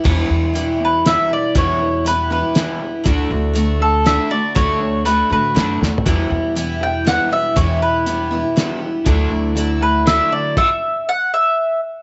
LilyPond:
<<
  \new Staff \with { instrumentName = "Mandolin" } { \time 3/4 \key e \minor \tempo 4 = 120 r4. b'8 e''8 d''8 | cis''4 b'8 b'4 r8 | r4. a'8 e''8 d''8 | cis''4 b'8 b'4 r8 |
r4. g''8 fis''8 e''8 | cis''8 b'2 r8 | r4. b'8 e''8 d''8 | e''4 fis''8 e''4 r8 | }
  \new Staff \with { instrumentName = "Twelve-string acoustic guitar" } { \time 3/4 \key e \minor <e, b, e g b e'>4 <e g b e'>4 <e g b e'>4 | <e, b, e g b e'>4 <e g b e'>8 <e g b e'>8 <e g b e'>4 | <d a d' fis'>4 <d a d' fis'>4 <d a d' fis'>8 <a d' fis'>8 | <d a d' fis'>4 <d a d' fis'>8 <a d' fis'>8 <d a d' fis'>4 |
<e, b, e g b e'>4 <e g b e'>4 <e g b e'>8 <e g b e'>8 | <e, b, e g b e'>4 <e g b e'>8 <e g b e'>8 <e g b e'>4 | <d fis a d' e'>4 <fis a d' e'>4 <fis a d' e'>4 | r2. | }
  \new Staff \with { instrumentName = "Overdriven electric guitar" } { \clef bass \time 3/4 \key e \minor <e, b, e>8 <e, b,>8 <e, b,>8 <e, b,>8 <e, b, e>8 <e, b,>8 | <e, b, e>8 <e, b,>8 <e, b,>8 <e, b,>8 <e, b, e>8 <e, b,>8 | <d a d'>8 <d a>8 <d a>8 <d a>8 <d a d'>8 <d a>8 | <d a d'>8 <d a>8 <d a>8 <d a>8 <d a d'>8 <d a>8 |
<e, b, e>8 <e, b,>8 <e, b,>8 <e, b,>8 <e, b, e>8 <e, b,>8 | <e, b, e>8 <e, b,>8 <e, b,>8 <e, b,>8 <e, b, e>8 <e, b,>8 | <d a d'>8 <d a>8 <d a>8 <d a>8 <d a d'>8 <d a>8 | r2. | }
  \new Staff \with { instrumentName = "Upright bass" } { \clef bass \time 3/4 \key e \minor e,8 e,2 r8 | e,2 r4 | d,8 d,2 r8 | d,4. a,8 fis,8 e,8 |
e,8 e,2 r8 | e,2 r4 | d,8 d,2 r8 | r2. | }
  \new DrumStaff \with { instrumentName = "Drums" } \drummode { \time 3/4 <cymc bd>4 hh4 <hh sn>4 | <hh bd>4 hh4 <hh sn>4 | <hh bd>4 hh4 <hh sn>4 | <hh bd>4 hh4 \tuplet 3/2 { <hh sn>16 r16 r16 sn16 r16 tomfh16 } |
<hh bd>4 hh4 <hh sn>4 | <hh bd>4 hh4 <hh sn>4 | <hh bd>4 hh4 <hh sn>4 | <cymc bd>4 r4 r4 | }
>>